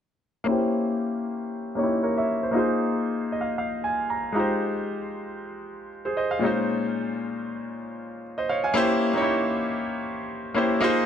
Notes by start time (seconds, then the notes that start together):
0.44 A#3 C#4 E4
0.49 G4 C5
1.75 A#3 C#4 D#4 G4 C#5
1.83 E4
2.03 A#4 C#5
2.17 C#5 E5
2.43 C5
2.51 A#3 D#4 F4
2.57 G#4 C5
3.32 D#5
3.41 F5
3.58 F5
3.84 G#5
4.10 A#5
4.32 G#3 D#4 F4 A#5
4.38 G4 C5
6.05 G#4 C5
6.17 C5 D#5
6.31 F5
6.39 A#2 G#3 C#4
6.43 D#4 F4 C5
8.38 C5 D#5
8.49 C#5 F5
8.64 F5 G#5
8.74 A#3 C#4 E4 G4 C5
9.14 A#3 C#4 D#4 G4 C#5
9.22 E4
10.54 A#3 C#4 E4 G4 C5
10.80 A#3 D#4 F4 G#4 C5